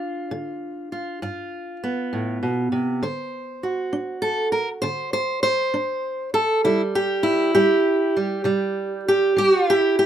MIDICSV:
0, 0, Header, 1, 2, 480
1, 0, Start_track
1, 0, Tempo, 604230
1, 2405, Time_signature, 12, 3, 24, 8
1, 7991, End_track
2, 0, Start_track
2, 0, Title_t, "Steel-string acoustic guitar"
2, 0, Program_c, 0, 25
2, 0, Note_on_c, 0, 62, 43
2, 0, Note_on_c, 0, 65, 82
2, 248, Note_on_c, 0, 50, 69
2, 678, Note_off_c, 0, 50, 0
2, 720, Note_off_c, 0, 65, 0
2, 732, Note_on_c, 0, 65, 44
2, 966, Note_off_c, 0, 65, 0
2, 971, Note_on_c, 0, 43, 76
2, 975, Note_on_c, 0, 65, 51
2, 1399, Note_off_c, 0, 43, 0
2, 1455, Note_off_c, 0, 62, 0
2, 1458, Note_on_c, 0, 59, 46
2, 1690, Note_on_c, 0, 45, 56
2, 1924, Note_off_c, 0, 45, 0
2, 1927, Note_on_c, 0, 47, 58
2, 2157, Note_off_c, 0, 47, 0
2, 2161, Note_on_c, 0, 48, 62
2, 2381, Note_off_c, 0, 65, 0
2, 2383, Note_off_c, 0, 59, 0
2, 2403, Note_off_c, 0, 48, 0
2, 2403, Note_on_c, 0, 50, 73
2, 2408, Note_on_c, 0, 72, 49
2, 2836, Note_off_c, 0, 50, 0
2, 2886, Note_on_c, 0, 66, 42
2, 3120, Note_on_c, 0, 62, 60
2, 3348, Note_off_c, 0, 72, 0
2, 3351, Note_on_c, 0, 69, 89
2, 3554, Note_off_c, 0, 62, 0
2, 3587, Note_off_c, 0, 69, 0
2, 3591, Note_on_c, 0, 70, 69
2, 3718, Note_off_c, 0, 70, 0
2, 3827, Note_on_c, 0, 72, 95
2, 3840, Note_on_c, 0, 50, 73
2, 4067, Note_off_c, 0, 72, 0
2, 4077, Note_on_c, 0, 72, 88
2, 4274, Note_off_c, 0, 50, 0
2, 4303, Note_off_c, 0, 72, 0
2, 4312, Note_on_c, 0, 72, 93
2, 4558, Note_on_c, 0, 62, 59
2, 4993, Note_off_c, 0, 62, 0
2, 5032, Note_off_c, 0, 72, 0
2, 5036, Note_on_c, 0, 69, 90
2, 5256, Note_off_c, 0, 66, 0
2, 5277, Note_off_c, 0, 69, 0
2, 5278, Note_on_c, 0, 48, 67
2, 5281, Note_on_c, 0, 64, 82
2, 5285, Note_on_c, 0, 55, 51
2, 5406, Note_off_c, 0, 64, 0
2, 5524, Note_on_c, 0, 67, 91
2, 5713, Note_off_c, 0, 48, 0
2, 5744, Note_on_c, 0, 64, 85
2, 5985, Note_off_c, 0, 67, 0
2, 5994, Note_on_c, 0, 67, 89
2, 5998, Note_off_c, 0, 55, 0
2, 6001, Note_on_c, 0, 55, 62
2, 6435, Note_off_c, 0, 55, 0
2, 6475, Note_off_c, 0, 64, 0
2, 6487, Note_on_c, 0, 55, 48
2, 6706, Note_on_c, 0, 48, 73
2, 6710, Note_off_c, 0, 55, 0
2, 6713, Note_on_c, 0, 55, 56
2, 7148, Note_off_c, 0, 48, 0
2, 7200, Note_off_c, 0, 67, 0
2, 7216, Note_on_c, 0, 67, 93
2, 7437, Note_off_c, 0, 55, 0
2, 7440, Note_on_c, 0, 55, 60
2, 7454, Note_on_c, 0, 66, 101
2, 7637, Note_off_c, 0, 66, 0
2, 7637, Note_on_c, 0, 65, 101
2, 7691, Note_off_c, 0, 67, 0
2, 7705, Note_on_c, 0, 67, 103
2, 7756, Note_off_c, 0, 65, 0
2, 7756, Note_on_c, 0, 64, 101
2, 7875, Note_off_c, 0, 55, 0
2, 7925, Note_off_c, 0, 67, 0
2, 7935, Note_on_c, 0, 67, 93
2, 7991, Note_off_c, 0, 64, 0
2, 7991, Note_off_c, 0, 67, 0
2, 7991, End_track
0, 0, End_of_file